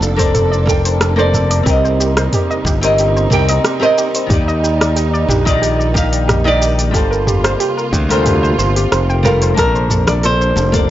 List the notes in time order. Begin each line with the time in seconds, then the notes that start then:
Already playing: C3 A#3 D4 A4 C5 D5
0.01 F1 A4, shaker
0.16 A#3 A4 C5 D5, kick, open hi-hat, shaker
0.34 A4, mid tom, open hi-hat, shaker
0.52 D5, shaker
0.66 A#3 A4 C5 G5, kick, shaker
0.85 C5, open hi-hat, shaker
1.01 A4, cross-stick, open hi-hat, shaker
1.16 A#3 A4 C5 D5, shaker
1.34 A4, mid tom, shaker
1.51 D5, open hi-hat, shaker
1.63 C2 G3 C4 D#4 G4, kick, open hi-hat
1.67 A#4 D#5, shaker
1.84 C5, shaker
2.00 G4, shaker
2.17 C5, cross-stick, open hi-hat, shaker
2.33 G4, mid tom, open hi-hat, shaker
2.51 D#5, shaker
2.65 G1 G4, kick, shaker
2.81 C4 G4 A#4 C5 D#5, open hi-hat, shaker
2.98 G4, open hi-hat, shaker
3.17 C5, shaker
3.30 C2 C4 G4 A#4 G5, mid tom, shaker
3.49 D#5, open hi-hat, shaker
3.65 G4, cross-stick, open hi-hat, shaker
3.80 C4 G4 A#4 C5 D#5, shaker
3.98 G4, shaker
4.15 C5, open hi-hat, shaker
4.26 D#2 D#3 A#3 D#4, kick, mid tom, open hi-hat
4.31 G4 D5, shaker
4.48 D#5, shaker
4.63 G4, shaker
4.81 D5, cross-stick, open hi-hat, shaker
4.96 G4, open hi-hat, shaker
5.13 D5, shaker
5.28 A#1 G4, mid tom, shaker
5.45 D#3 D#4 G4 D5 D#5, kick, open hi-hat, shaker
5.62 G4, open hi-hat, shaker
5.79 D5, shaker
5.94 D#3 D#4 G4 F5, kick, shaker
6.12 D5, open hi-hat, shaker
6.28 G4, cross-stick, mid tom, open hi-hat, shaker
6.44 D#3 D#4 G4 D5 D#5, shaker
6.61 G4, shaker
6.78 D5, open hi-hat, shaker
6.91 G1 C3 G3 F4 G4 A4, kick, open hi-hat
6.95 C5, shaker
7.11 A#4, shaker
7.27 G4, mid tom, shaker
7.44 C5, cross-stick, open hi-hat, shaker
7.60 G4, open hi-hat, shaker
7.77 A#4, shaker
7.93 D2 G4, kick, shaker
8.09 G3 F4 A4 A#4 C5, open hi-hat, shaker
8.26 G4, mid tom, open hi-hat, shaker
8.43 C5, shaker
8.58 G1 C5, shaker
8.76 G4, open hi-hat, shaker
8.92 F1 C5, cross-stick, open hi-hat, shaker
9.10 G5, shaker
9.23 G3 F4 A4 A#4 F5, mid tom, shaker
9.42 C5, open hi-hat, shaker
9.54 A#1 A#3 A4 A5, kick, open hi-hat
9.58 D4 A#4 C5 D5, shaker
9.75 C5, shaker
9.90 A4, mid tom, shaker
10.07 D5, cross-stick, open hi-hat, low conga, shaker
10.23 A4 C5, open hi-hat, shaker
10.41 C5, shaker
10.56 F1 A4, high conga, shaker
10.72 A#3 A4 C5 D5, kick, open hi-hat, shaker